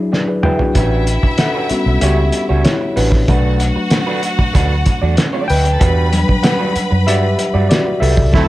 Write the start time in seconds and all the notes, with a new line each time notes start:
Already playing: F#3 D4 E4 G#4
0.12 B4 D5, muted clean electric guitar stroke, snare
0.27 G#4 B4, muted clean electric guitar stroke
0.43 B3 E4 F#4 G#4 B4 E5 G5, mid tom
0.59 D4 F#4, muted clean electric guitar stroke, floor tom
0.75 A1 G3 C#4 E4 F#4 B4 E5, kick, closed hi-hat
1.07 closed hi-hat
1.23 muted clean electric guitar stroke, muted fingered electric bass stroke, kick
1.38 A4 F#5, muted clean electric guitar stroke, snare, closed hi-hat
1.55 G3 C#4 F#4 B4
1.69 G3 B3 C#4 F#4, muted fingered electric bass stroke, muted clean electric guitar stroke, closed hi-hat
1.86 B1, muted clean electric guitar stroke
2.01 C#2 G3 C#4 F#4 G4 C#5 E5, closed hi-hat
2.32 muted clean electric guitar stroke, closed hi-hat
2.49 C#2 G3 C#4 F#4 C#5
2.65 E4 C#5, snare, closed hi-hat
2.81 muted clean electric guitar stroke
2.96 A1 G3 C#4 D4 F#4 B4, open hi-hat
3.12 muted clean electric guitar stroke, kick, snare
3.28 B1 F#3 A3 D4 F#4 B4 F#5, kick, closed hi-hat
3.60 closed hi-hat
3.76 muted clean electric guitar stroke
3.90 muted clean electric guitar stroke, snare, closed hi-hat
4.07 A3 D4 F#4 B4
4.23 muted clean electric guitar stroke, closed hi-hat
4.38 muted clean electric guitar stroke, kick
4.53 D2 A3 D4 F#4 B4, kick, closed hi-hat
4.86 muted clean electric guitar stroke, kick, closed hi-hat
5.02 E2 A3 D4 F#4 D5
5.17 muted clean electric guitar stroke, snare, closed hi-hat
5.32 A3 C4 D4 F#4 C5 D5
5.41 D4 D5
5.47 D2 E4 B4 E5 G5, muted clean electric guitar stroke, open hi-hat
5.56 F#4 F#5
5.63 G4 G5, muted clean electric guitar stroke, closed hi-hat
5.71 A4 A5
5.79 E2 G3 D4 F#4 B4 B5, kick, closed hi-hat
6.12 F#3 G3 D4, closed hi-hat
6.28 muted clean electric guitar stroke, kick
6.43 B4 F#5, muted clean electric guitar stroke, snare, closed hi-hat
6.59 G3 D4 F#4 B4
6.75 muted clean electric guitar stroke, muted fingered electric bass stroke, closed hi-hat
6.91 F#2, muted clean electric guitar stroke
7.07 G2 G3 D4 F#4 G4 D5 E5, closed hi-hat
7.38 muted clean electric guitar stroke, closed hi-hat
7.54 G2 G3 D4 F#4 D5
7.69 F#4 D5, muted clean electric guitar stroke, snare, closed hi-hat
7.85 muted clean electric guitar stroke
8.00 C2 G3 D4 F#4 A4 B4 E5, open hi-hat
8.17 muted clean electric guitar stroke, kick
8.32 D2 C3 F#3 A3 C4 E4 F#4 A4 C5 A5, kick, snare